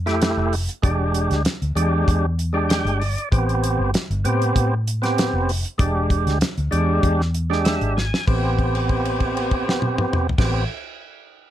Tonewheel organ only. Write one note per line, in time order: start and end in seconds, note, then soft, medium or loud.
0.06 0.55 A3 medium
0.06 0.55 E4 medium
0.06 0.55 G4 loud
0.82 1.42 G#3 medium
0.82 1.42 D4 medium
0.82 1.43 G4 medium
1.75 2.26 G#3 medium
1.75 2.26 D4 medium
1.75 2.26 G4 medium
2.53 3.02 G#3 medium
2.53 3.03 D4 medium
2.53 3.03 G4 loud
2.69 2.98 G5 medium
3.00 3.29 D5 medium
3.31 3.91 B3 medium
3.31 3.91 C4 medium
3.31 3.91 G4 medium
4.24 4.74 B3 loud
4.24 4.74 C4 medium
4.24 4.75 G4 loud
5.02 5.51 B3 medium
5.02 5.51 C4 medium
5.02 5.52 G4 loud
5.78 6.38 G#3 medium
5.78 6.38 D4 medium
5.78 6.39 G4 medium
6.71 7.21 G#3 medium
6.71 7.21 D4 medium
6.71 7.22 G4 loud
7.50 7.99 G#3 loud
7.50 7.99 D4 medium
7.50 7.99 G4 loud
7.65 7.94 E5 medium
7.97 8.25 G#5 medium
8.27 10.27 B3 medium
8.27 10.27 C4 medium
8.27 10.27 G4 medium
10.38 10.64 B3 medium
10.38 10.64 C4 medium
10.38 10.64 G4 medium